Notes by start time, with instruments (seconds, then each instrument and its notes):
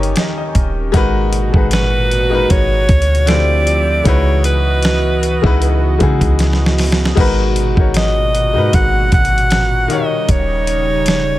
Already playing: 808-style bass G1, analog synth pad D#3 C#4 G4, grand piano D#3 D#4 G4 A#4 C#5 D#5 G#5
0.00 grand piano G5, closed hi-hat
0.16 grand piano D#5, snare, closed hi-hat
0.38 grand piano D#5
0.55 808-style bass D#1, kick, closed hi-hat
0.92 808-style bass G#1, analog synth pad A#2 B2 F#4, grand piano G#3 D#4 F#4 A#4, kick, closed hi-hat
0.97 grand piano B4
1.33 closed hi-hat
1.52 808-style bass G#1, grand piano G#3 D#4 F#4 G#4, kick
1.57 grand piano B4
1.71 alto saxophone B4, snare, closed hi-hat
2.11 closed hi-hat
2.30 grand piano G#3 D#4 F#4 A#4
2.35 grand piano B4
2.50 808-style bass G#1, alto saxophone C#5, kick, closed hi-hat
2.89 808-style bass D2, kick, closed hi-hat
3.02 closed hi-hat
3.15 closed hi-hat
3.26 grand piano D3 A3 E4 F4 G4, analog synth pad F3 C4 G4 E5, alto saxophone D5, snare, closed hi-hat
3.31 grand piano C5
3.67 closed hi-hat
4.04 808-style bass C#2, grand piano C#3 G#3 D#4 E4 F#4, analog synth pad E3 B3 F#4 D#5, alto saxophone C#5, kick, closed hi-hat
4.08 grand piano B4
4.44 alto saxophone B4, closed hi-hat
4.83 snare, closed hi-hat
5.23 closed hi-hat
5.42 808-style bass C#2, grand piano C#3 G#3 D#4 E4 F#4, kick
5.46 grand piano B4
5.62 closed hi-hat
5.98 grand piano C#3 G#3 D#4 E4 F#4, 808-style bass C#3, kick, closed hi-hat
6.03 grand piano G#4
6.21 808-style bass C#2, kick, closed hi-hat
6.39 snare, closed hi-hat
6.53 snare
6.66 snare
6.78 snare, open hi-hat
6.92 snare
7.05 snare
7.15 808-style bass G#1, analog synth pad A#2 B2 F#4, grand piano G#3 D#4 F#4 A#4, kick, crash
7.20 grand piano B4
7.56 closed hi-hat
7.75 808-style bass G#1, grand piano G#3 D#4 F#4 A#4, kick
7.80 grand piano C#5
7.94 alto saxophone D#5, snare, closed hi-hat
8.35 closed hi-hat
8.53 808-style bass G#2, grand piano G#3 D#4 F#4 A#4
8.58 grand piano B4
8.73 808-style bass G#1, alto saxophone F#5, kick, closed hi-hat
9.12 808-style bass G#1, alto saxophone F#5, kick, closed hi-hat
9.25 closed hi-hat
9.38 closed hi-hat
9.51 snare, closed hi-hat
9.88 analog synth pad C#3 G3 D#4, grand piano D#3 D#4 G4 A#4, alto saxophone D#5, closed hi-hat
9.93 grand piano C#5
10.29 808-style bass D#1, alto saxophone C#5, kick, closed hi-hat
10.67 closed hi-hat
11.06 snare, closed hi-hat